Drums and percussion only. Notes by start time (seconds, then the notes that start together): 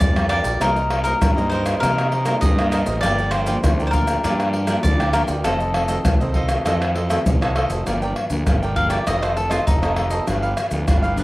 0.01 pandeiro, maracas, surdo
0.16 pandeiro, tamborim, maracas
0.30 pandeiro, tamborim
0.44 pandeiro, maracas
0.61 pandeiro, tamborim, maracas, surdo
0.76 pandeiro, maracas
0.91 pandeiro, tamborim
1.05 pandeiro, maracas
1.22 pandeiro, tamborim, maracas, surdo
1.38 pandeiro, maracas
1.51 pandeiro
1.66 pandeiro, tamborim, maracas
1.83 pandeiro, tamborim, maracas, surdo
1.98 pandeiro, tamborim, maracas
2.12 pandeiro
2.26 pandeiro, tamborim, maracas
2.42 pandeiro, maracas, surdo
2.59 pandeiro, tamborim, maracas
2.72 pandeiro, tamborim, maracas
2.86 pandeiro, maracas
3.03 pandeiro, tamborim, maracas, surdo
3.18 pandeiro, maracas
3.32 pandeiro, tamborim
3.47 pandeiro, maracas
3.64 pandeiro, tamborim, maracas, surdo
3.80 pandeiro, maracas
3.93 pandeiro, maracas, surdo
4.07 pandeiro, tamborim, maracas
4.24 pandeiro, tamborim, maracas, surdo
4.40 pandeiro, tamborim, maracas
4.53 pandeiro
4.67 pandeiro, tamborim, maracas
4.84 pandeiro, maracas, surdo
5.00 pandeiro, tamborim, maracas
5.13 pandeiro, tamborim, maracas
5.28 pandeiro, maracas
5.45 pandeiro, tamborim, maracas, surdo
5.60 pandeiro, maracas
5.74 pandeiro, tamborim
5.88 pandeiro, maracas
6.05 pandeiro, tamborim, maracas, surdo
6.21 pandeiro, maracas
6.34 pandeiro, surdo
6.49 pandeiro, tamborim, maracas
6.66 pandeiro, tamborim, maracas, surdo
6.82 pandeiro, tamborim, maracas
6.96 pandeiro
7.10 pandeiro, tamborim, maracas
7.26 pandeiro, maracas, surdo
7.42 pandeiro, tamborim, maracas
7.56 pandeiro, tamborim
7.70 pandeiro, maracas
7.87 pandeiro, tamborim, maracas, surdo
8.02 pandeiro, maracas
8.16 pandeiro, tamborim
8.30 pandeiro, maracas
8.47 pandeiro, tamborim, maracas, surdo
8.63 pandeiro, maracas
8.76 pandeiro, surdo
8.90 pandeiro, tamborim, maracas
9.07 pandeiro, tamborim, maracas, surdo
9.23 pandeiro, tamborim, maracas
9.37 pandeiro
9.51 pandeiro, tamborim, maracas
9.67 pandeiro, maracas, surdo
9.83 pandeiro, tamborim, maracas
9.96 pandeiro, tamborim
10.11 pandeiro, maracas
10.27 pandeiro, tamborim, maracas, surdo
10.43 pandeiro, maracas
10.57 pandeiro, tamborim, maracas
10.71 pandeiro, maracas
10.88 pandeiro, tamborim, maracas, surdo
11.04 pandeiro, maracas
11.18 pandeiro, maracas